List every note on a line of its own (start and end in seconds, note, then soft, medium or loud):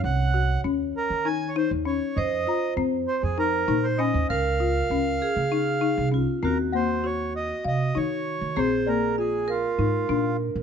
0.00 0.58 C2 medium
0.00 2.30 C#5 medium
0.04 0.61 F#5 medium
0.34 0.52 F#4 medium
0.64 0.91 D#2 medium
0.64 0.99 C#4 medium
0.97 1.27 A#4 medium
1.10 1.64 D#3 medium
1.25 1.43 D#4 medium
1.25 1.50 G#5 loud
1.49 1.56 C#5 medium
1.56 1.73 D#4 medium
1.56 1.71 C5 medium
1.71 1.98 D#2 medium
1.85 2.03 C#4 medium
1.85 2.18 C#5 medium
2.17 2.44 F2 medium
2.17 4.27 C5 medium
2.17 2.74 D#5 medium
2.47 2.65 F4 medium
2.47 3.31 A#5 medium
2.77 3.04 F2 medium
2.77 3.12 C4 medium
3.08 3.22 C5 medium
3.23 3.64 F2 medium
3.23 3.38 G#4 medium
3.38 3.56 D#4 medium
3.38 3.86 A#4 medium
3.68 4.09 A#2 medium
3.68 3.86 D#4 medium
3.84 4.00 C5 medium
3.98 4.17 C#4 medium
3.98 4.27 D#5 medium
3.98 4.57 G#5 medium
4.14 4.28 D#2 medium
4.30 4.84 C#2 medium
4.30 5.24 A#4 medium
4.30 6.09 F5 loud
4.60 4.78 F4 medium
4.90 5.17 C#2 medium
4.90 5.26 C#4 medium
5.22 6.09 G#4 medium
5.36 5.90 C#3 medium
5.52 5.69 D#4 medium
5.52 6.35 F5 medium
5.81 5.99 D#4 medium
5.98 6.25 C2 medium
6.12 6.29 C#4 medium
6.12 6.42 F4 medium
6.43 7.51 D#2 medium
6.43 6.60 C4 medium
6.43 8.64 F#4 medium
6.43 6.58 A#4 medium
6.72 6.91 A#3 medium
6.72 7.06 C5 medium
6.72 7.56 F#5 medium
7.04 7.39 F#4 medium
7.04 7.33 C#5 medium
7.36 7.64 D#5 medium
7.64 7.92 C3 medium
7.64 7.98 D#5 medium
7.64 7.82 F5 medium
7.95 8.37 D#3 medium
7.95 8.30 D#4 medium
7.95 8.59 C#5 medium
8.41 8.55 D#3 medium
8.56 9.65 A#1 medium
8.56 8.74 C4 medium
8.56 9.51 G#4 medium
8.56 8.89 C5 medium
8.86 9.05 A#3 medium
8.86 9.16 A#4 medium
8.86 9.70 D5 medium
9.18 9.53 F4 medium
9.18 9.50 G#4 medium
9.48 10.37 F4 medium
9.48 10.63 A#4 medium
9.79 10.06 G#2 medium
9.79 9.96 D#4 medium
10.09 10.50 A#2 medium
10.09 10.44 D4 medium
10.56 10.63 A#2 medium